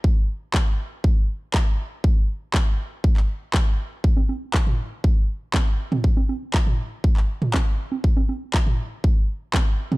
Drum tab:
CP |----x-------x---|----x----x--x---|----x-------x---|----x----x--x---|
T2 |----------------|----------------|-----o---------o|-----o-----o----|
CG |----------------|----------------|-oo---------o--o|-oo---------o--o|
BD |o---o---o---o---|o---o---o---o---|o---o---o---o---|o---o---o---o---|

CP |----x-------x---|
T2 |-----o---------o|
CG |-oo---------o--o|
BD |o---o---o---o---|